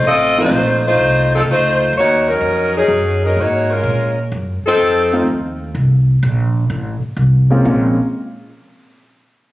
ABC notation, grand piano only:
X:1
M:4/4
L:1/8
Q:"Swing" 1/4=126
K:Bbm
V:1 name="Grand piano"
z [F,=A,CEF] z6 | z8 | z4 z [F,=A,CEF] z2 | z6 z [A,B,CDF] |
[A,B,CDF] z6 z |]